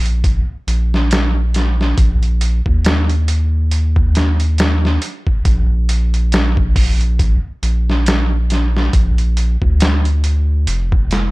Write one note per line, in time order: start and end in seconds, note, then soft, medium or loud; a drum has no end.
0.00 0.44 A#1 medium
0.06 closed hi-hat soft
0.24 kick loud
0.24 closed hi-hat medium
0.67 1.94 A#1 medium
0.67 closed hi-hat medium
0.94 snare soft
1.11 snare loud
1.11 closed hi-hat medium
1.54 snare soft
1.54 closed hi-hat medium
1.81 snare soft
1.98 2.61 A#1 loud
1.98 kick loud
1.98 closed hi-hat medium
2.23 closed hi-hat soft
2.41 closed hi-hat medium
2.66 4.98 D#2 medium
2.66 kick loud
2.85 snare loud
2.85 closed hi-hat medium
3.09 closed hi-hat soft
3.28 closed hi-hat medium
3.71 closed hi-hat medium
3.96 kick medium
4.15 snare medium
4.15 closed hi-hat medium
4.40 closed hi-hat soft
4.58 snare loud
4.58 closed hi-hat medium
4.85 snare soft
5.02 closed hi-hat medium
5.27 kick medium
5.45 7.39 A#1 loud
5.45 kick loud
5.45 closed hi-hat medium
5.89 closed hi-hat medium
6.14 closed hi-hat soft
6.32 snare loud
6.32 closed hi-hat medium
6.57 kick loud
6.76 kick medium
6.76 open hi-hat medium
7.01 closed hi-hat soft
7.19 kick loud
7.19 closed hi-hat medium
7.63 8.90 A#1 medium
7.63 closed hi-hat medium
7.90 snare soft
8.06 snare loud
8.06 closed hi-hat medium
8.50 snare soft
8.50 closed hi-hat medium
8.77 snare soft
8.93 9.57 A#1 loud
8.93 kick loud
8.93 closed hi-hat medium
9.18 closed hi-hat soft
9.37 closed hi-hat medium
9.62 10.67 D2 medium
9.62 kick medium
9.80 snare loud
9.80 closed hi-hat medium
10.05 closed hi-hat soft
10.24 closed hi-hat medium
10.67 11.31 F1 loud
10.67 closed hi-hat medium
10.92 kick loud
11.11 snare medium
11.11 closed hi-hat medium